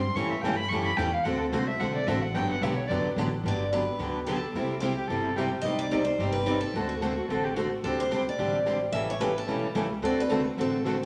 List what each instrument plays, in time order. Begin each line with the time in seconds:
Already playing: upright bass G2
0.03 violin C6
0.15 upright bass A2, steel-string acoustic guitar C#3 E3 G3 A3 C#4 E4 G4 A4, violin C#6
0.31 violin E5
0.41 upright bass G2, steel-string acoustic guitar C#3 E3 G3 A3 C#4 E4 A4, violin G5
0.46 steel-string acoustic guitar G4
0.56 violin B5
0.68 upright bass F#2, steel-string acoustic guitar C#3 G3, violin C#6
0.72 steel-string acoustic guitar E3 A3 C#4 E4 G4 A4
0.85 violin B5
0.97 upright bass E2, steel-string acoustic guitar C#3 E3 G3 A3 C#4 E4 G4 A4, violin G5
1.12 violin F5
1.23 upright bass D2, steel-string acoustic guitar D3 A3 C4 F#4 A4, violin F#5
1.40 violin A4
1.52 upright bass C2, steel-string acoustic guitar D3 A3 C4 F#4 A4, violin C5
1.67 violin E5
1.80 upright bass B1, steel-string acoustic guitar D3 A3 C4 F#4 A4, violin F#5
1.95 violin D5
2.07 upright bass A1, steel-string acoustic guitar D3 A3 C4 F#4 A4, violin E5
2.21 violin F#5
2.34 upright bass G1, steel-string acoustic guitar D3 F#3 B3 D4 G4, violin G5
2.50 violin F#5
2.61 upright bass B1, steel-string acoustic guitar D3 F#3 B3 D4 G4, violin E5
2.76 violin C#5
2.87 upright bass F#1, steel-string acoustic guitar D3 F#3 B3 G4, violin D5
2.91 steel-string acoustic guitar D4
3.04 muted upright bass stroke
3.16 upright bass A1, steel-string acoustic guitar D3 F#3 B3 D4 G4
3.43 upright bass G1, steel-string acoustic guitar D3 F#3 B3 D4 G4
3.48 steel-string acoustic guitar D5
3.72 steel-string acoustic guitar D3 F#3 B3 D4 G4 B4
3.99 upright bass D2, steel-string acoustic guitar D3 F#3 B3 D4 G4
4.26 steel-string acoustic guitar D3 F#3 B3 D4 G4 A4
4.54 upright bass C2, steel-string acoustic guitar C3 G3 C4 E4 G4
4.80 steel-string acoustic guitar C3 G3 C4 E4 G4
4.96 violin G4
5.07 upright bass G1, steel-string acoustic guitar C3 G3 C4 E4 G4, violin A4
5.36 steel-string acoustic guitar C3 G3 C4 E4 G4, violin G4
5.61 upright bass C2, steel-string acoustic guitar C3 D#5
5.66 steel-string acoustic guitar G3 C4 D#4 G4 D5
5.79 steel-string acoustic guitar D5
5.91 steel-string acoustic guitar C3 G3 C4 D#4 G4 D5
6.05 steel-string acoustic guitar C5
6.18 upright bass G1, steel-string acoustic guitar C3 G3 C4 D#4 G4 D5
6.32 steel-string acoustic guitar B4
6.46 steel-string acoustic guitar C3 G3 C4 D#4 G4 D5
6.61 steel-string acoustic guitar A4
6.74 upright bass D2, steel-string acoustic guitar D3 A3 C4 F#4 A4
6.89 steel-string acoustic guitar F#4
7.02 steel-string acoustic guitar D3 A3 C4 F#4 A4
7.16 violin F#4
7.28 upright bass A1, steel-string acoustic guitar D3 A3 C4 F#4 A4, violin A4
7.44 violin G4
7.54 steel-string acoustic guitar D3 A3 C4 F#4 A4, violin F#4
7.83 upright bass D2, steel-string acoustic guitar D3 G3 C4 D4 G4 A4
8.00 steel-string acoustic guitar C5
8.11 steel-string acoustic guitar D3 G3 C4 D4 G4
8.29 steel-string acoustic guitar D5
8.38 upright bass A1, steel-string acoustic guitar D3 G3 C4 D4 G4
8.66 steel-string acoustic guitar D3 G3 C4 D4 G4
8.92 upright bass A1, steel-string acoustic guitar C#3 E3 G3 A3 C#4 E4 G4 A4 E5
9.10 steel-string acoustic guitar C#5
9.20 steel-string acoustic guitar C#3 E3 G3 A3 C#4 E4 G4 A4 B4
9.38 steel-string acoustic guitar A4
9.47 upright bass B1, steel-string acoustic guitar C#3 E3 G3 A3 C#4 E4 G4 A4
9.75 upright bass C#2, steel-string acoustic guitar C#3 E3 G3 A3 C#4 E4 G4 A4
10.02 upright bass D2, steel-string acoustic guitar D3 A3 C4 F#4 A4 D5
10.20 steel-string acoustic guitar B4
10.29 steel-string acoustic guitar D3 A3 C4 F#4 A4
10.57 upright bass A1, steel-string acoustic guitar D3 A3 C4 F#4 A4
10.86 steel-string acoustic guitar D3 A3 C4 F#4 A4